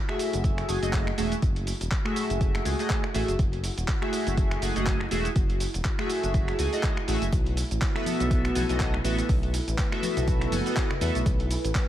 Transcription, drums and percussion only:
0.09 finger snap medium
0.19 open hi-hat loud
0.19 shaker medium
0.33 closed hi-hat medium
0.33 shaker soft
0.44 kick loud
0.44 closed hi-hat medium
0.44 shaker soft
0.58 finger snap medium
0.58 closed hi-hat soft
0.69 open hi-hat loud
0.69 shaker medium
0.83 closed hi-hat medium
0.83 shaker soft
0.93 kick loud
0.93 clap loud
0.93 closed hi-hat medium
0.93 shaker soft
1.07 finger snap medium
1.18 open hi-hat loud
1.18 shaker medium
1.32 closed hi-hat medium
1.32 shaker soft
1.42 kick loud
1.42 closed hi-hat medium
1.42 shaker soft
1.56 closed hi-hat soft
1.67 open hi-hat loud
1.67 shaker medium
1.81 closed hi-hat medium
1.81 shaker soft
1.91 kick loud
1.91 clap loud
1.91 closed hi-hat medium
1.91 shaker soft
2.06 finger snap medium
2.16 open hi-hat loud
2.16 shaker medium
2.30 closed hi-hat medium
2.30 shaker soft
2.41 kick loud
2.41 closed hi-hat medium
2.41 shaker soft
2.55 finger snap medium
2.55 closed hi-hat soft
2.65 open hi-hat loud
2.65 shaker medium
2.79 open hi-hat medium
2.79 shaker soft
2.90 kick loud
2.90 clap loud
2.90 closed hi-hat medium
2.90 shaker soft
3.04 finger snap medium
3.14 open hi-hat loud
3.14 shaker medium
3.28 closed hi-hat soft
3.28 shaker soft
3.39 kick loud
3.39 closed hi-hat medium
3.39 shaker soft
3.53 closed hi-hat soft
3.64 open hi-hat loud
3.64 shaker medium
3.78 closed hi-hat medium
3.78 shaker soft
3.88 kick loud
3.88 clap loud
3.88 closed hi-hat medium
3.88 shaker soft
4.02 finger snap medium
4.13 open hi-hat loud
4.13 shaker medium
4.27 closed hi-hat medium
4.27 shaker soft
4.37 kick loud
4.37 closed hi-hat medium
4.37 shaker soft
4.51 finger snap medium
4.51 closed hi-hat soft
4.62 open hi-hat loud
4.62 shaker medium
4.76 closed hi-hat soft
4.76 shaker soft
4.86 kick loud
4.86 clap loud
4.86 closed hi-hat medium
4.86 shaker soft
5.00 finger snap medium
5.11 open hi-hat loud
5.11 shaker medium
5.25 closed hi-hat medium
5.25 shaker soft
5.36 kick loud
5.36 closed hi-hat medium
5.36 shaker soft
5.50 closed hi-hat soft
5.60 open hi-hat loud
5.60 shaker medium
5.74 closed hi-hat soft
5.74 shaker soft
5.85 kick loud
5.85 clap loud
5.85 closed hi-hat medium
5.85 shaker soft
5.99 finger snap medium
6.10 open hi-hat loud
6.10 shaker medium
6.23 closed hi-hat soft
6.23 shaker soft
6.34 kick loud
6.34 closed hi-hat medium
6.34 shaker soft
6.48 finger snap medium
6.48 closed hi-hat soft
6.59 open hi-hat loud
6.59 shaker medium
6.73 open hi-hat medium
6.73 shaker soft
6.83 kick loud
6.83 clap loud
6.83 closed hi-hat medium
6.83 shaker soft
6.97 finger snap medium
7.08 open hi-hat loud
7.08 shaker medium
7.22 closed hi-hat soft
7.22 shaker soft
7.33 kick loud
7.33 closed hi-hat medium
7.33 shaker soft
7.46 closed hi-hat soft
7.57 closed hi-hat medium
7.57 open hi-hat loud
7.57 shaker medium
7.71 closed hi-hat soft
7.71 shaker soft
7.81 kick loud
7.81 snare loud
7.81 clap loud
7.81 closed hi-hat medium
7.81 shaker soft
7.96 finger snap medium
7.96 snare soft
8.06 closed hi-hat medium
8.06 open hi-hat loud
8.06 high conga medium
8.06 shaker medium
8.20 closed hi-hat soft
8.20 low conga medium
8.20 shaker soft
8.31 kick loud
8.31 closed hi-hat medium
8.31 shaker soft
8.45 finger snap medium
8.45 closed hi-hat soft
8.55 closed hi-hat medium
8.55 open hi-hat loud
8.55 high conga medium
8.55 shaker medium
8.69 snare medium
8.69 closed hi-hat soft
8.69 shaker soft
8.80 kick loud
8.80 snare loud
8.80 clap loud
8.80 closed hi-hat medium
8.80 shaker soft
8.94 finger snap medium
8.94 low conga medium
9.05 closed hi-hat medium
9.05 open hi-hat loud
9.05 shaker medium
9.19 snare medium
9.19 closed hi-hat medium
9.19 shaker soft
9.29 kick loud
9.29 closed hi-hat medium
9.29 open hi-hat medium
9.29 shaker soft
9.43 closed hi-hat soft
9.54 closed hi-hat medium
9.54 open hi-hat loud
9.54 shaker medium
9.68 closed hi-hat medium
9.68 shaker soft
9.78 kick loud
9.78 snare loud
9.78 clap loud
9.78 closed hi-hat medium
9.78 shaker soft
9.92 finger snap medium
10.02 closed hi-hat medium
10.02 open hi-hat medium
10.02 high conga medium
10.02 shaker medium
10.16 snare soft
10.16 closed hi-hat medium
10.16 low conga medium
10.16 shaker soft
10.28 kick loud
10.28 closed hi-hat medium
10.28 shaker soft
10.41 finger snap medium
10.41 closed hi-hat soft
10.52 closed hi-hat medium
10.52 open hi-hat loud
10.52 high conga medium
10.52 shaker medium
10.66 snare medium
10.66 open hi-hat medium
10.66 shaker soft
10.76 kick loud
10.76 snare loud
10.76 clap loud
10.76 closed hi-hat medium
10.76 shaker soft
10.91 finger snap medium
10.91 low conga medium
11.01 closed hi-hat medium
11.01 open hi-hat loud
11.01 shaker medium
11.15 closed hi-hat medium
11.15 shaker soft
11.26 kick loud
11.26 closed hi-hat medium
11.26 shaker soft
11.40 closed hi-hat soft
11.51 closed hi-hat medium
11.51 open hi-hat loud
11.51 shaker medium
11.64 closed hi-hat medium
11.64 shaker soft
11.75 kick loud
11.75 snare loud
11.75 clap loud
11.75 closed hi-hat medium
11.75 shaker soft

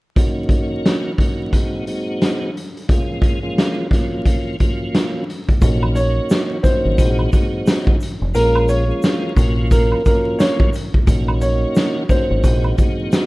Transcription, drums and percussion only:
0.16 kick loud
0.16 closed hi-hat medium
0.49 kick loud
0.49 closed hi-hat medium
0.86 snare loud
0.86 closed hi-hat medium
1.18 kick medium
1.18 closed hi-hat medium
1.53 kick medium
1.53 closed hi-hat medium
1.87 closed hi-hat medium
2.22 snare loud
2.22 closed hi-hat medium
2.57 closed hi-hat medium
2.77 closed hi-hat soft
2.89 kick loud
2.89 closed hi-hat medium
3.22 kick loud
3.22 closed hi-hat medium
3.58 snare loud
3.58 closed hi-hat medium
3.91 kick medium
3.91 snare soft
3.91 closed hi-hat medium
4.25 kick medium
4.25 closed hi-hat medium
4.60 kick medium
4.60 closed hi-hat medium
4.95 snare loud
4.95 closed hi-hat medium
5.30 closed hi-hat medium
5.49 kick medium
5.49 closed hi-hat soft
5.62 kick loud
5.62 closed hi-hat medium
5.62 shaker medium
5.83 high woodblock medium
5.96 closed hi-hat medium
5.96 shaker medium
6.30 snare loud
6.30 closed hi-hat medium
6.30 shaker medium
6.64 kick medium
6.64 closed hi-hat medium
6.64 shaker soft
6.98 kick medium
6.98 closed hi-hat loud
6.98 shaker medium
7.19 high woodblock medium
7.33 kick medium
7.33 closed hi-hat medium
7.33 shaker soft
7.67 snare loud
7.67 closed hi-hat medium
7.67 shaker medium
7.87 kick loud
8.01 closed hi-hat medium
8.01 shaker medium
8.35 closed hi-hat medium
8.35 shaker medium
8.55 high woodblock medium
8.69 closed hi-hat medium
8.69 shaker medium
9.03 snare loud
9.03 closed hi-hat medium
9.03 shaker medium
9.37 kick medium
9.37 closed hi-hat medium
9.37 shaker soft
9.71 kick medium
9.71 closed hi-hat loud
9.71 shaker medium
9.92 high woodblock medium
10.06 kick medium
10.06 closed hi-hat medium
10.06 shaker soft
10.40 snare loud
10.40 closed hi-hat medium
10.40 shaker medium
10.60 kick loud
10.73 closed hi-hat medium
10.73 shaker medium
10.94 kick medium
11.07 kick loud
11.07 closed hi-hat medium
11.07 shaker medium
11.28 high woodblock medium
11.41 closed hi-hat medium
11.41 shaker medium
11.75 snare loud
11.75 closed hi-hat medium
11.75 shaker medium
12.09 kick medium
12.09 closed hi-hat medium
12.09 shaker soft
12.44 kick medium
12.44 closed hi-hat loud
12.44 shaker medium
12.64 high woodblock medium
12.78 kick medium
12.78 closed hi-hat medium
12.78 shaker soft
13.12 snare loud
13.12 closed hi-hat medium
13.12 shaker medium

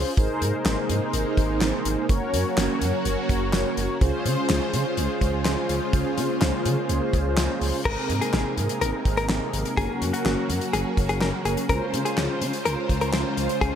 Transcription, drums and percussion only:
0.17 kick loud
0.17 closed hi-hat medium
0.42 closed hi-hat medium
0.65 snare loud
0.65 clap medium
0.65 closed hi-hat medium
0.90 closed hi-hat medium
1.13 closed hi-hat medium
1.37 kick loud
1.37 closed hi-hat medium
1.61 snare loud
1.61 clap medium
1.61 closed hi-hat medium
1.85 closed hi-hat medium
2.09 kick loud
2.09 closed hi-hat medium
2.34 closed hi-hat medium
2.57 snare loud
2.57 clap medium
2.57 closed hi-hat medium
2.81 closed hi-hat medium
3.05 closed hi-hat medium
3.29 kick loud
3.29 closed hi-hat medium
3.53 snare loud
3.53 clap medium
3.53 closed hi-hat medium
3.77 closed hi-hat medium
4.01 kick loud
4.01 closed hi-hat medium
4.26 closed hi-hat medium
4.49 snare loud
4.49 clap medium
4.49 closed hi-hat medium
4.74 closed hi-hat medium
4.97 closed hi-hat medium
5.21 kick loud
5.21 closed hi-hat medium
5.45 snare loud
5.45 clap medium
5.45 closed hi-hat medium
5.69 closed hi-hat medium
5.93 kick loud
5.93 closed hi-hat medium
6.18 closed hi-hat medium
6.41 snare loud
6.41 clap medium
6.41 closed hi-hat medium
6.65 closed hi-hat medium
6.89 closed hi-hat medium
7.13 kick loud
7.13 closed hi-hat medium
7.37 snare loud
7.37 clap medium
7.37 closed hi-hat medium
7.61 open hi-hat medium
7.85 kick loud
7.85 crash loud
8.10 closed hi-hat medium
8.22 closed hi-hat medium
8.34 snare loud
8.34 clap medium
8.57 closed hi-hat medium
8.69 closed hi-hat medium
8.81 closed hi-hat medium
9.05 kick loud
9.05 closed hi-hat medium
9.17 closed hi-hat soft
9.29 snare loud
9.29 clap medium
9.53 closed hi-hat medium
9.65 closed hi-hat medium
9.77 kick loud
9.77 closed hi-hat medium
10.02 closed hi-hat medium
10.14 closed hi-hat medium
10.26 snare loud
10.26 clap medium
10.50 closed hi-hat medium
10.61 closed hi-hat medium
10.73 closed hi-hat medium
10.97 kick medium
10.97 closed hi-hat medium
11.09 closed hi-hat medium
11.21 snare loud
11.21 clap medium
11.45 closed hi-hat medium
11.57 closed hi-hat medium
11.69 kick loud
11.69 closed hi-hat medium
11.94 closed hi-hat medium
12.06 closed hi-hat medium
12.18 snare loud
12.18 clap loud
12.42 closed hi-hat medium
12.53 closed hi-hat medium
12.65 closed hi-hat medium
12.89 kick medium
12.89 closed hi-hat medium
13.01 closed hi-hat soft
13.13 snare loud
13.13 clap medium
13.37 closed hi-hat medium
13.49 closed hi-hat medium
13.61 kick loud
13.61 closed hi-hat medium

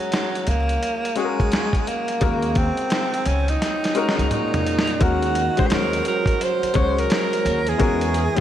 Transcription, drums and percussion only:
0.12 snare loud
0.12 closed hi-hat medium
0.35 closed hi-hat soft
0.47 closed hi-hat medium
0.69 closed hi-hat soft
0.83 closed hi-hat medium
1.05 closed hi-hat soft
1.16 closed hi-hat medium
1.40 kick medium
1.40 closed hi-hat soft
1.52 snare medium
1.52 closed hi-hat medium
1.73 kick medium
1.73 closed hi-hat soft
1.87 closed hi-hat medium
2.08 closed hi-hat soft
2.21 kick medium
2.21 closed hi-hat medium
2.43 closed hi-hat soft
2.55 kick medium
2.55 closed hi-hat medium
2.77 closed hi-hat soft
2.90 snare loud
2.90 closed hi-hat medium
3.14 closed hi-hat soft
3.25 closed hi-hat medium
3.48 closed hi-hat medium
3.62 snare medium
3.62 closed hi-hat medium
3.84 snare soft
3.84 closed hi-hat medium
3.95 closed hi-hat medium
4.09 snare medium
4.19 closed hi-hat soft
4.31 closed hi-hat medium
4.31 mid tom medium
4.54 closed hi-hat soft
4.54 floor tom medium
4.67 closed hi-hat medium
4.79 snare medium
4.87 closed hi-hat soft
5.01 kick loud
5.01 closed hi-hat medium
5.22 closed hi-hat soft
5.35 closed hi-hat medium
5.57 kick medium
5.57 closed hi-hat soft
5.70 snare loud
5.70 closed hi-hat medium
5.93 closed hi-hat medium
6.05 closed hi-hat medium
6.26 kick medium
6.26 closed hi-hat medium
6.41 closed hi-hat medium
6.63 closed hi-hat medium
6.74 kick medium
6.74 closed hi-hat medium
6.98 closed hi-hat soft
7.10 snare loud
7.10 closed hi-hat medium
7.33 closed hi-hat medium
7.46 closed hi-hat medium
7.67 closed hi-hat medium
7.80 kick loud
7.80 closed hi-hat medium
8.01 closed hi-hat medium
8.14 closed hi-hat medium
8.37 closed hi-hat medium

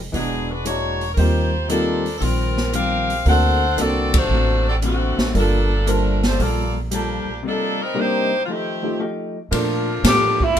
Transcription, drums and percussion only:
0.14 kick soft
0.14 open hi-hat soft
0.66 closed hi-hat medium
1.01 open hi-hat soft
1.17 kick soft
1.17 open hi-hat soft
1.70 closed hi-hat medium
2.06 open hi-hat soft
2.22 kick soft
2.22 open hi-hat soft
2.57 snare soft
2.73 closed hi-hat medium
3.10 open hi-hat soft
3.26 kick soft
3.26 open hi-hat soft
3.78 closed hi-hat medium
4.14 kick medium
4.14 ride medium
4.82 closed hi-hat medium
5.19 snare medium
5.35 kick soft
5.35 open hi-hat soft
5.87 closed hi-hat medium
6.23 snare medium
6.23 open hi-hat soft
6.40 kick soft
6.40 open hi-hat soft
6.91 closed hi-hat medium
9.52 kick soft
9.52 ride medium
10.04 kick soft
10.04 snare medium
10.04 hi-hat pedal medium
10.04 ride medium
10.40 kick medium
10.57 ride medium

